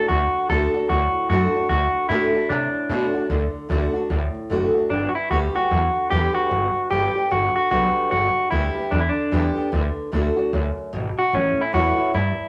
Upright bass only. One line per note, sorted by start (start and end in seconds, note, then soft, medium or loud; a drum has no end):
0.09 0.28 D2 loud
0.33 muted upright bass stroke medium
0.49 0.68 D2 loud
0.74 muted upright bass stroke medium
0.89 1.08 D2 loud
1.14 muted upright bass stroke medium
1.30 1.48 F#2 medium
1.54 muted upright bass stroke medium
1.69 1.88 D2 loud
1.94 muted upright bass stroke medium
2.10 2.28 A2 loud
2.34 muted upright bass stroke medium
2.50 2.68 C3 medium
2.74 muted upright bass stroke medium
2.89 3.08 B2 medium
3.14 muted upright bass stroke medium
3.30 3.48 D2 medium
3.54 muted upright bass stroke medium
3.70 3.88 D2 loud
3.94 muted upright bass stroke medium
4.10 4.28 D2 medium
4.35 muted upright bass stroke medium
4.50 4.69 F#1 medium
4.75 muted upright bass stroke medium
4.90 5.09 G1 medium
5.15 muted upright bass stroke medium
5.31 5.49 D2 medium
5.55 muted upright bass stroke medium
5.71 5.89 E2 loud
5.95 muted upright bass stroke medium
6.11 6.29 E2 medium
6.35 muted upright bass stroke medium
6.51 6.69 G1 medium
6.76 muted upright bass stroke medium
6.91 7.09 G1 medium
7.16 muted upright bass stroke medium
7.32 7.50 G1 medium
7.56 muted upright bass stroke medium
7.71 7.90 B1 medium
7.96 muted upright bass stroke medium
8.12 8.30 G1 medium
8.36 muted upright bass stroke medium
8.52 8.70 D2 loud
8.76 muted upright bass stroke medium
8.92 9.10 E2 medium
9.17 muted upright bass stroke medium
9.32 9.50 E2 medium
9.57 muted upright bass stroke medium
9.73 9.91 D2 medium
9.97 muted upright bass stroke medium
10.13 10.31 D2 medium
10.37 muted upright bass stroke medium
10.53 10.71 D2 medium
10.77 muted upright bass stroke medium
10.93 11.11 G#1 medium
11.18 muted upright bass stroke medium
11.33 11.52 A1 medium
11.57 muted upright bass stroke medium
11.74 11.92 E2 loud
12.14 12.32 G2 medium
12.38 muted upright bass stroke medium